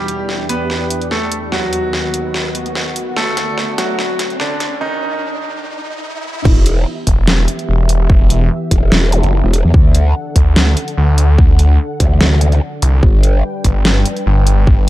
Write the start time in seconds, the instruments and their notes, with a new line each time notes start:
Already playing: analog synth pad E2 E3 D4 G4, grand piano G3 G4, riser
0.08 closed hi-hat
0.29 snare
0.49 grand piano B3 B4, closed hi-hat
0.70 snare
0.90 closed hi-hat
1.02 closed hi-hat
1.11 grand piano A3 A4, snare
1.32 closed hi-hat
1.52 analog synth pad D#2 D#3 B3 F#4, grand piano F#3 F#4, snare
1.73 closed hi-hat
1.93 snare
2.14 closed hi-hat
2.34 snare
2.55 closed hi-hat
2.66 closed hi-hat
2.75 snare
2.96 closed hi-hat
3.17 analog synth pad D2 D3 A3, grand piano A3 A4, snare
3.37 snare, closed hi-hat
3.58 snare
3.78 grand piano F#3 F#4, snare, closed hi-hat
3.99 snare
4.19 snare, closed hi-hat
4.30 closed hi-hat
4.40 grand piano D3 D4, snare
4.60 snare, closed hi-hat
4.81 grand piano D#3 D#4
6.15 high tom
6.25 mid tom
6.36 mid tom
6.45 wobble bass E1, analog synth pad E3 B3 G4 E5, kick, crash
6.66 closed hi-hat
7.07 detuned saw bass E1, kick, closed hi-hat
7.27 snare
7.48 closed hi-hat
7.59 closed hi-hat
7.69 detuned saw bass E1
7.89 closed hi-hat
8.10 detuned saw bass E1, kick
8.30 closed hi-hat
8.71 wobble bass E1, kick, closed hi-hat
8.92 wobble bass E1, snare
9.12 closed hi-hat, zap
9.23 detuned saw bass F#1, closed hi-hat
9.44 wobble bass E1
9.53 closed hi-hat
9.64 wobble bass E2
9.74 wobble bass D2, analog synth pad D3 D4 A4 F#5, kick
9.95 closed hi-hat
10.36 detuned saw bass D2, kick, closed hi-hat
10.56 snare
10.77 closed hi-hat
10.88 closed hi-hat
10.97 detuned saw bass D2
11.18 closed hi-hat
11.38 detuned saw bass D2, kick
11.59 closed hi-hat
12.00 wobble bass D2, kick, closed hi-hat
12.21 wobble bass D2, snare
12.41 closed hi-hat
12.52 closed hi-hat
12.82 detuned saw bass C2, closed hi-hat
13.03 wobble bass G1, analog synth pad G3 B4 G5, kick
13.23 closed hi-hat
13.64 detuned saw bass G1, kick, closed hi-hat
13.85 snare
14.06 closed hi-hat
14.17 closed hi-hat
14.26 detuned saw bass G1
14.47 closed hi-hat
14.67 detuned saw bass G1, kick